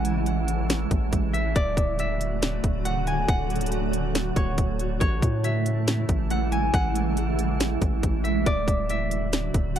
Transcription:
0.00 0.87 A1 loud
0.00 1.52 C#3 medium
0.00 1.52 E3 medium
0.00 1.52 G#3 medium
0.00 1.52 A3 medium
0.00 1.52 E4 medium
0.00 0.26 E5 medium
0.00 1.44 F#5 loud
0.00 1.11 G#5 medium
0.05 closed hi-hat medium
0.26 closed hi-hat medium
0.48 closed hi-hat medium
0.70 snare loud
0.70 closed hi-hat medium
0.91 1.12 A1 loud
0.91 kick medium
0.91 closed hi-hat medium
1.13 1.54 A1 loud
1.13 kick medium
1.13 closed hi-hat medium
1.33 1.99 E5 medium
1.33 closed hi-hat medium
1.56 1.76 D1 loud
1.56 4.98 C#3 medium
1.56 4.98 D3 medium
1.56 4.98 F#3 medium
1.56 8.42 A3 medium
1.56 4.98 F#4 medium
1.56 3.40 D5 loud
1.56 kick loud
1.56 closed hi-hat medium
1.77 2.60 D1 loud
1.77 kick loud
1.77 closed hi-hat medium
1.99 3.72 E5 medium
1.99 closed hi-hat medium
2.21 closed hi-hat medium
2.42 snare loud
2.42 closed hi-hat medium
2.64 3.26 D1 loud
2.64 kick medium
2.64 closed hi-hat medium
2.85 3.28 F#5 medium
2.85 closed hi-hat medium
3.07 4.57 G#5 medium
3.07 closed hi-hat medium
3.28 4.32 D1 loud
3.28 4.89 F#5 loud
3.28 kick loud
3.28 closed hi-hat medium
3.50 closed hi-hat medium
3.56 closed hi-hat medium
3.61 closed hi-hat medium
3.66 closed hi-hat medium
3.72 closed hi-hat medium
3.93 closed hi-hat medium
4.15 snare loud
4.15 closed hi-hat medium
4.36 4.57 D1 loud
4.36 5.00 C#5 medium
4.36 kick loud
4.36 closed hi-hat medium
4.58 4.99 D1 loud
4.58 kick medium
4.58 closed hi-hat medium
4.79 closed hi-hat medium
5.00 5.22 A1 loud
5.00 8.43 C#3 medium
5.00 8.43 E3 medium
5.00 8.43 G#3 medium
5.00 8.43 E4 medium
5.00 6.91 C#5 loud
5.00 kick loud
5.00 closed hi-hat medium
5.22 6.05 A2 loud
5.22 kick medium
5.22 closed hi-hat medium
5.44 7.17 E5 medium
5.44 closed hi-hat medium
5.66 closed hi-hat medium
5.88 snare loud
5.88 closed hi-hat medium
6.09 6.71 A1 loud
6.09 kick loud
6.09 closed hi-hat medium
6.30 6.74 F#5 medium
6.30 closed hi-hat medium
6.52 8.02 G#5 medium
6.52 closed hi-hat medium
6.74 7.78 A1 loud
6.74 8.35 F#5 loud
6.74 kick loud
6.74 closed hi-hat medium
6.96 closed hi-hat medium
7.17 closed hi-hat medium
7.39 closed hi-hat medium
7.60 snare loud
7.60 closed hi-hat medium
7.82 8.02 A1 loud
7.82 kick medium
7.82 closed hi-hat medium
8.03 8.45 A1 loud
8.03 kick medium
8.03 closed hi-hat medium
8.24 8.90 E5 medium
8.24 closed hi-hat medium
8.46 8.67 D1 loud
8.46 9.79 C#3 medium
8.46 9.79 D3 medium
8.46 9.79 F#3 medium
8.46 9.79 A3 medium
8.46 9.79 F#4 medium
8.46 9.79 D5 loud
8.46 kick loud
8.46 closed hi-hat medium
8.68 9.51 D1 loud
8.68 kick medium
8.68 closed hi-hat medium
8.89 9.79 E5 medium
8.89 closed hi-hat medium
9.11 closed hi-hat medium
9.33 snare loud
9.33 closed hi-hat medium
9.54 9.79 D1 loud
9.54 kick loud
9.54 closed hi-hat medium
9.76 9.79 F#5 medium
9.76 closed hi-hat medium

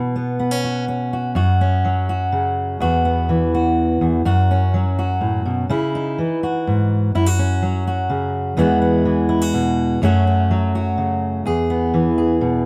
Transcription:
0.00 1.34 B2 medium
0.16 0.38 B3 medium
0.39 0.51 B3 medium
0.51 0.87 C#4 soft
0.64 1.12 F#4 medium
0.88 1.34 C#4 medium
1.13 1.34 F#4 medium
1.35 2.77 F#2 medium
1.35 2.09 F#4 medium
1.61 2.78 C#4 medium
1.85 2.83 F#3 medium
2.09 2.81 F#4 medium
2.32 2.78 C#3 medium
2.80 4.00 E2 medium
2.80 3.54 F#4 medium
3.05 4.25 B3 medium
3.29 4.22 E3 medium
3.54 4.23 F#4 medium
4.01 4.25 E2 medium
4.25 5.67 F#2 medium
4.25 4.97 F#4 medium
4.51 5.95 C#4 medium
4.74 5.67 F#3 medium
4.99 5.67 F#4 medium
5.21 5.45 A2 medium
5.46 5.69 B2 medium
5.69 6.17 C#3 medium
5.69 6.42 E4 medium
5.95 7.11 D#4 medium
6.18 7.11 E3 medium
6.43 7.11 F#4 medium
6.67 7.12 G#2 medium
7.15 8.55 F#2 medium
7.15 7.26 E4 medium
7.26 7.86 F#4 medium
7.39 8.55 C#4 medium
7.62 8.57 F#3 medium
7.87 8.59 F#4 medium
8.10 8.55 C#3 medium
8.57 10.01 E2 medium
8.57 9.04 E3 medium
8.57 9.99 G#3 medium
8.57 8.80 B3 medium
8.57 9.28 F#4 medium
8.82 10.02 B3 medium
9.05 9.99 E3 medium
9.29 9.41 E4 medium
9.41 10.02 F#4 soft
9.54 9.99 B2 medium
10.02 11.43 F#2 medium
10.02 10.49 F#3 medium
10.02 11.44 A3 medium
10.02 10.26 C#4 medium
10.02 10.74 F#4 medium
10.27 11.44 C#4 medium
10.51 11.43 F#3 medium
10.75 11.44 F#4 medium
10.98 11.43 C#3 medium
11.46 12.65 E2 medium
11.46 12.17 G#4 medium
11.70 12.65 B3 medium
11.94 12.65 E3 medium
12.18 12.65 G#4 medium
12.41 12.65 B2 medium

